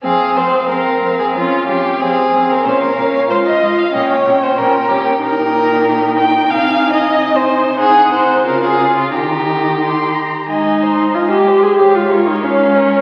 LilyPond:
<<
  \new Staff \with { instrumentName = "Violin" } { \time 2/4 \key f \minor \tempo 4 = 93 f''8 f''8 f''8 f''8 | f''8 f''8 f''8 f''8 | f''8 f''8 f''8 f''8 | g''8 g''8 g''8 g''8 |
\key aes \major g''2 | aes''2 | ges''4 f''4 | bes''4 c'''8 bes''8 |
aes''8 c'''8 aes''8 c'''8 | f''8 des''8 f''8 des''8 | }
  \new Staff \with { instrumentName = "Violin" } { \time 2/4 \key f \minor aes'8 c''8 bes'8. aes'16 | f'8 g'8 aes'8. bes'16 | c''16 bes'8 des''16 c''16 ees''8 f''16 | ees''16 des''8 c''16 bes'8 g'16 r16 |
\key aes \major bes'4. g''8 | \tuplet 3/2 { f''4 ees''8~ ees''8 c''4 } | aes'8 c''8 bes'16 aes'8 f'16 | g'4. r8 |
ees''8 c''8 ees''8 c''8 | des''8 bes'8 des''8 bes'8 | }
  \new Staff \with { instrumentName = "Viola" } { \time 2/4 \key f \minor c'8 c'8 c'8 c'8 | des'8 des'8 c'8 c'8 | des'8 des'8 f'8 f'8 | des'8 des'8 des'8 des'8 |
\key aes \major ees'2~ | ees'2 | ees'4 f'4 | ees'4. r8 |
ees'4 f'16 g'8 aes'16 | g'16 f'8 ees'16 des'4 | }
  \new Staff \with { instrumentName = "Cello" } { \clef bass \time 2/4 \key f \minor f,8 f,8 f,8 f,8 | f,8 f,8 f,8 f,8 | bes,8 bes,8 aes,8 aes,8 | bes,8 bes,8 bes,8 bes,8 |
\key aes \major bes,2 | c2~ | c4 des4 | ees4. r8 |
aes,4 aes,4 | aes,4 aes,4 | }
>>